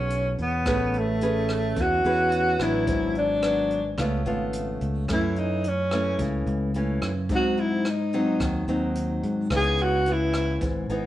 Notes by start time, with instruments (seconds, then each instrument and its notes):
Already playing: fingered electric bass B1, nylon-string guitar B2 G#4 C#5, tenor saxophone C#4
0.10 closed hi-hat
0.38 fingered electric bass E2, tenor saxophone B3, closed hi-hat
0.66 fingered electric bass A1, nylon-string guitar A3 C#4 G#4 B4, kick, cross-stick, closed hi-hat
0.94 closed hi-hat
0.98 tenor saxophone A3
1.21 nylon-string guitar C#4 G#4 B4, closed hi-hat
1.49 cross-stick, closed hi-hat
1.76 fingered electric bass E2, nylon-string guitar E3, kick, closed hi-hat
1.81 tenor saxophone F#4
2.04 fingered electric bass E2, nylon-string guitar C#4 G#4 B4, closed hi-hat
2.32 closed hi-hat
2.59 fingered electric bass A1, nylon-string guitar F#3 B3 D4, tenor saxophone E4, cross-stick, closed hi-hat
2.87 fingered electric bass G#1, nylon-string guitar G#2, kick, closed hi-hat
3.15 tenor saxophone D4, closed hi-hat
3.43 nylon-string guitar F#3 B3 D4, cross-stick, closed hi-hat
3.71 closed hi-hat
3.98 fingered electric bass C#2, nylon-string guitar C#3 A3 B3 F4, kick, cross-stick, closed hi-hat
4.25 fingered electric bass G#1, nylon-string guitar A3 B3 F4, closed hi-hat
4.53 closed hi-hat
4.81 fingered electric bass C#2, closed hi-hat
5.08 fingered electric bass F#2, nylon-string guitar F#2 E3 A3 C#4, kick, cross-stick, closed hi-hat
5.12 tenor saxophone E4
5.36 tenor saxophone D#4, closed hi-hat
5.64 closed hi-hat
5.68 tenor saxophone C#4
5.91 nylon-string guitar E3 A3 C#4, cross-stick, closed hi-hat
6.19 fingered electric bass C#2, nylon-string guitar C#3, kick, closed hi-hat
6.47 fingered electric bass C#2, closed hi-hat
6.74 nylon-string guitar E3 A3 C#4, closed hi-hat
7.02 fingered electric bass F#2, cross-stick, closed hi-hat
7.29 fingered electric bass G#2, nylon-string guitar G#2 F#3 C4 D#4, kick, closed hi-hat
7.35 tenor saxophone F#4
7.57 tenor saxophone E4, closed hi-hat
7.85 cross-stick, closed hi-hat
7.90 tenor saxophone D#4
8.13 nylon-string guitar F#3 C4 D#4, closed hi-hat
8.40 fingered electric bass D#2, nylon-string guitar D#3, kick, cross-stick, closed hi-hat
8.68 fingered electric bass D#2, nylon-string guitar F#3 C4 D#4, closed hi-hat
8.95 closed hi-hat
9.23 fingered electric bass G#2, closed hi-hat
9.50 fingered electric bass C#2, nylon-string guitar C#3 E3 B3 D#4, kick, cross-stick, closed hi-hat
9.56 tenor saxophone G#4
9.78 closed hi-hat
9.82 tenor saxophone F#4
10.06 nylon-string guitar E3 B3, closed hi-hat
10.12 tenor saxophone E4
10.33 cross-stick, closed hi-hat
10.61 fingered electric bass G#1, nylon-string guitar G#2, kick, closed hi-hat
10.89 fingered electric bass G#1, nylon-string guitar E3 B3 D#4, closed hi-hat